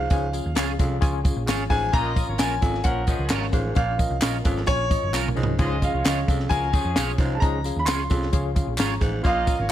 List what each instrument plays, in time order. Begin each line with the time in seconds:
Already playing: tonewheel organ F3 C#4 G#4, grand piano F5
0.10 picked electric bass C#2, baritone saxophone G#2, tine electric piano C#3 C#4 F4 G#4 C#5 G#5, kick, closed hi-hat, tambourine
0.33 tine electric piano C#4 F4 G#4 C#5 F5, closed hi-hat, tambourine
0.46 picked electric bass D#2
0.55 picked electric bass C#2, tine electric piano C#4 F4 G#4 C#5 F5, clean electric guitar C#4 F4 G#4 C#5, snare, clap, closed hi-hat, tambourine
0.79 picked electric bass C2, baritone saxophone F2, tine electric piano C#4 F4 G#4 C#5 F5, kick, closed hi-hat, tambourine
1.01 picked electric bass C#2, tine electric piano C#4 F4 G#4 C#5 G#5, kick, closed hi-hat, tambourine
1.24 tine electric piano C#4 F4 G#4 C#5 F5, kick, closed hi-hat, tambourine
1.36 picked electric bass A#1
1.46 picked electric bass G#1, tine electric piano C#4 F4 G#4 C#5 G#5, clean electric guitar C#4 F4 G#4 C#5, snare, clap, closed hi-hat, tambourine
1.70 picked electric bass A1, baritone saxophone G#2, tine electric piano C#4 F4 G#4 C#5 F5, grand piano G#5, kick, open hi-hat, tambourine
1.92 picked electric bass A#1, tine electric piano A#2 C#4 F4 A#4 C#5 F5, baritone saxophone A#2, tonewheel organ F3 C#4 A#4, horn section A#3 F4 D#5, grand piano A#5, kick, closed hi-hat, tambourine
2.15 tine electric piano C#4 F4 A#4 C#5 F5, kick, closed hi-hat, tambourine
2.28 picked electric bass G#1, horn section A#3 F4 C#5
2.38 picked electric bass A#1, clean electric guitar C#4 F4 A#4 C#5, tine electric piano C#4 F4 A#4 C#5 F5, grand piano G#5, snare, clap, closed hi-hat, tambourine
2.61 picked electric bass G#1, baritone saxophone F2, tine electric piano C#4 F4 A#4 C#5 F5, kick, closed hi-hat, tambourine
2.74 snare
2.83 picked electric bass A#1, horn section F3 C#4 A#4, tine electric piano C#4 F4 A#4 C#5 F5, grand piano F#5, kick, closed hi-hat, tambourine
3.07 horn section F3 C#4 G#4, tine electric piano C#4 F4 A#4 C#5 D#5, kick, closed hi-hat, tambourine
3.19 picked electric bass C#2
3.29 picked electric bass G#1, tine electric piano C#4 F4 A#4 C#5 F5, clean electric guitar C#4 F4 A#4 C#5, snare, clap, closed hi-hat, tambourine
3.42 snare
3.52 picked electric bass A1, baritone saxophone G#2, tine electric piano C#4 F4 A#4 C#5 F5, kick, closed hi-hat, tambourine
3.75 picked electric bass A#1, tine electric piano A#2 C#4 F4 A#4 C#5 F5, baritone saxophone A#2, grand piano F5, kick, closed hi-hat, tambourine
3.97 tine electric piano C#4 F4 A#4 C#5 D#5, kick, closed hi-hat, tambourine
4.10 picked electric bass C2
4.21 picked electric bass A#1, tine electric piano C#4 F4 A#4 C#5 D#5, clean electric guitar C#4 F4 A#4 C#5, snare, clap, closed hi-hat, tambourine
4.44 picked electric bass G#1, baritone saxophone F2, tine electric piano C#4 F4 A#4 C#5 F5, kick, closed hi-hat, tambourine
4.57 snare
4.66 picked electric bass A#1, tine electric piano C#4 F4 A#4 C#5 G#5, grand piano C#5, kick, closed hi-hat, tambourine
4.89 tine electric piano C#4 F4 A#4 C#5 D#5, kick, closed hi-hat, tambourine
5.03 picked electric bass F#1
5.12 picked electric bass B1, tine electric piano C#4 F4 A#4 C#5 F5, clean electric guitar C#4 F4 A#4 C#5, snare, clap, tambourine
5.28 mid tom
5.36 picked electric bass C2, baritone saxophone G#2, tine electric piano C#4 F4 A#4 C#5 D#5, tambourine
5.43 floor tom
5.58 picked electric bass C#2, baritone saxophone G#2, tine electric piano C#3 C#4 F4 G#4 C#5 F5, horn section G#3 F4 D#5, tonewheel organ G#4, kick, closed hi-hat, tambourine
5.81 tine electric piano C#4 F4 G#4 C#5 F5, grand piano F5, kick, closed hi-hat, tambourine
5.94 picked electric bass C2, horn section G#3 F4 C#5
6.05 picked electric bass C#2, tine electric piano C#4 F4 G#4 C#5 D#5, clean electric guitar C#4 F4 G#4 C#5, grand piano F5, snare, clap, closed hi-hat, tambourine
6.27 picked electric bass C2, baritone saxophone F2, tine electric piano C#4 F4 G#4 C#5 F5, kick, closed hi-hat, tambourine
6.39 snare
6.49 picked electric bass C#2, horn section A#3 F#4 A#4, tine electric piano C#4 F4 G#4 C#5 F5, grand piano G#5, kick, closed hi-hat, tambourine
6.73 horn section F3 C#4 G#4, tine electric piano C#4 F4 G#4 C#5 G#5, kick, closed hi-hat, tambourine
6.85 picked electric bass F2
6.95 picked electric bass B1, tine electric piano C#4 F4 G#4 C#5 F5, clean electric guitar C#4 F4 G#4 C#5, snare, clap, closed hi-hat, tambourine
7.18 picked electric bass C2, baritone saxophone G#2, tine electric piano C#4 F4 G#4 C#5 F5, kick, closed hi-hat, tambourine
7.35 grand piano A5
7.40 picked electric bass C#2, baritone saxophone G#2, tine electric piano C#3 C#4 F4 G#4 C#5 D#5, grand piano A#5, kick, closed hi-hat, tambourine
7.64 tine electric piano C#4 F4 G#4 C#5 F5, closed hi-hat, tambourine
7.76 picked electric bass D#2, grand piano B5
7.85 picked electric bass C#2, clean electric guitar C#4 F4 G#4 C#5, tine electric piano C#4 F4 G#4 F5, grand piano C6, snare, clap, closed hi-hat, tambourine
8.10 picked electric bass C2, baritone saxophone F2, tine electric piano C#4 F4 G#4 C#5 F5, kick, closed hi-hat, tambourine
8.22 snare
8.32 picked electric bass C#2, tine electric piano C#4 F4 G#4 C#5 F5, kick, closed hi-hat, tambourine
8.55 tine electric piano C#4 F4 G#4 C#5 F5, kick, closed hi-hat, tambourine
8.67 picked electric bass A#1
8.78 picked electric bass G#1, clean electric guitar C#4 F4 G#4 C#5, tine electric piano A#5 C#6, snare, clap, closed hi-hat, tambourine
9.01 picked electric bass A1, baritone saxophone G#2, tine electric piano F5 G#5, kick, closed hi-hat, tambourine
9.23 picked electric bass A#1, tine electric piano A#2 C#4 F4 A#4 C#5 F5, baritone saxophone A#2, tonewheel organ F3 A#4, horn section A#3 F4 D#5, grand piano F5, kick, closed hi-hat, tambourine
9.46 tine electric piano C#4 F4 A#4 C#5 F5, kick, closed hi-hat, tambourine
9.59 picked electric bass G#1, horn section A#3 F4 C#5